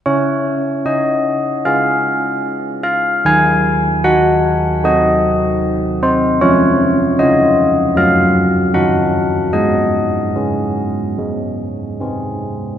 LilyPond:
\new Staff \with { instrumentName = "Church bells" } { \time 4/4 \key des \major \tempo 4 = 75 << { des''4 ees''4 f''4. f''8 | aes''4 ges''4 ees''4. c''8 | des''4 ees''4 f''4 ges''4 | ees''2. r4 | } \\ { des'4 des'4 <des' aes'>2 | ees4 ees'4 <c' ges'>2 | f4 <des' f'>4 ges4 <des' ees'>4 | aes4 <des' aes'>4 aes4 <c' aes'>4 | } >> }